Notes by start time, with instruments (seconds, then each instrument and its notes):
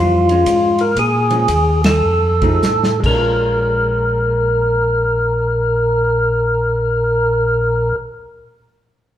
Already playing: tonewheel organ F2 F4
0.00 hollow-body jazz guitar E3 G3 C4
0.29 hollow-body jazz guitar F3 G#3 C#4, ride
0.46 tonewheel organ G#2, kick, hi-hat pedal, ride
0.79 tonewheel organ A#4, ride
0.96 tonewheel organ A#2 G#4, kick, ride
1.30 hollow-body jazz guitar F3 G#3 C#4, ride
1.48 tonewheel organ D#2, kick, hi-hat pedal, ride
1.84 tonewheel organ A4, snare, ride
2.03 tonewheel organ F2
2.42 hollow-body jazz guitar F3 A3 D#4 G#4, kick, ride
2.62 tonewheel organ A2, snare, hi-hat pedal
2.83 snare
3.00 tonewheel organ A#1, hollow-body jazz guitar G#3, kick, crash
3.06 hollow-body jazz guitar C#4, tonewheel organ A#4
3.13 hollow-body jazz guitar F4